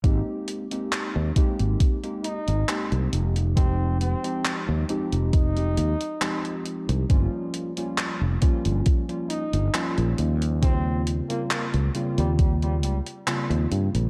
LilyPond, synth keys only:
\new Staff \with { instrumentName = "Synth keys" } { \time 4/4 \key aes \major \tempo 4 = 68 <aes bes c' ees' g'>8. <aes bes c' ees' g'>8. <aes bes c' ees' g'>8. <aes bes c' ees' g'>8 r16 <aes bes c' ees' g'>4 | <f aes c' ees' g'>8. <f aes c' ees' g'>8. <f aes c' ees' g'>8. <f aes c' ees' g'>8 r16 <f aes c' ees' g'>4 | <f g bes des' f'>8. <f g bes des' f'>8. <f g bes des' f'>8. <f g bes des' f'>8 r16 <f g bes des' f'>4 | <des g bes c' f'>8. <des g bes c' f'>8. <des g bes c' f'>8. <des g bes c' f'>8 r16 <des g bes c' f'>4 | }